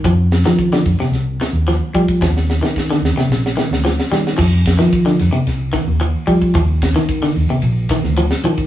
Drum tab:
CC |----------------|----------------|x---------------|----------------|
RD |----------------|----------------|--bbb-bbb-b-b---|b-bbb---b-b-b-bb|
HH |x-x-x-o-x-xxx-o-|----------------|--------------o-|------o---------|
SD |--oo-o-oo-o-o---|oooooooooooooooo|o-oo-oo-o-o-----|--oo-o----oo-o--|
BD |o---o-o-------oo|o---o-----------|o-o-o-----o---oo|o-o-o-----o----o|